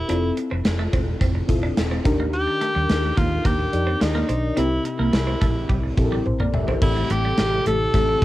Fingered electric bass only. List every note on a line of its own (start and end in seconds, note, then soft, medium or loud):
0.10 0.30 F1 medium
0.52 0.62 F1 medium
0.66 0.86 F1 medium
0.93 1.13 E1 medium
1.21 1.41 F1 medium
1.49 1.69 E1 medium
1.78 1.98 E1 medium
2.05 2.46 D#2 medium
2.76 2.86 D#2 medium
2.90 3.10 D#2 medium
3.18 3.38 D#2 medium
3.45 3.66 D#2 medium
3.73 3.94 F2 medium
4.01 4.22 D#2 medium
4.30 4.50 B1 medium
4.58 4.78 C2 loud
5.00 5.10 C2 medium
5.14 5.34 C2 medium
5.42 5.62 A#1 medium
5.70 5.90 C2 medium
5.98 6.18 A#1 medium
6.26 6.54 A#1 medium
6.54 6.74 G#1 medium
6.82 7.02 A1 medium
7.10 7.31 A1 medium
7.38 7.58 A1 medium
7.67 7.87 A1 medium
7.94 8.14 A1 medium